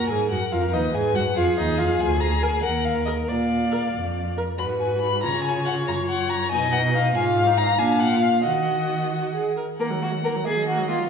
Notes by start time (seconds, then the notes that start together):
Already playing: A#4
0.09 G#2 G#4 A#4 G#5
0.31 F#2 F#4 F#5
0.52 F2 F4 F5
0.73 D#2 D#4 B4 D#5
0.94 G#2 G#4 G#5
1.15 F#2 F#4 F#5
1.36 F2 F4 G#4 F5
1.58 D#2 D#4 D#5
1.78 F2 F4 F5
2.00 D2 G#5
2.21 A#5
2.42 A#4 G#5
2.63 D#2 A#4 F#5
2.85 F5
3.06 A#4 D#5
3.27 A#2 D5 F5
3.72 A#4
3.94 F2
4.38 A#4
4.58 G#2 F#4 B4 B5
4.80 G#5
5.01 B5
5.23 C#3 F4 C#5 A#5
5.44 G#5
5.66 F#5
5.88 F#2 A#5
6.09 F#5
6.30 A#5
6.51 B2 D#4 D#5 G#5
6.72 F#5
6.95 F5
7.15 G#2 F4 F5 G#5
7.37 F5
7.47 D#4
7.58 A#5
7.78 A#2 D4 F5 G#5
8.00 F#5
8.11 F4
8.22 F5
8.44 D#3 F#4 D#5 F#5
9.12 F#4
9.34 G#4
9.57 A#4
9.78 D#3 A#3 A#4 F#5
9.91 F#3
10.02 A#3 F#4
10.13 F#3
10.24 A#3 A#4
10.35 F#3
10.45 D#3 A#3 G#4 D#5
10.56 F#3
10.67 A#3 F#4
10.79 F#3
10.89 A#3 F4
10.99 F#3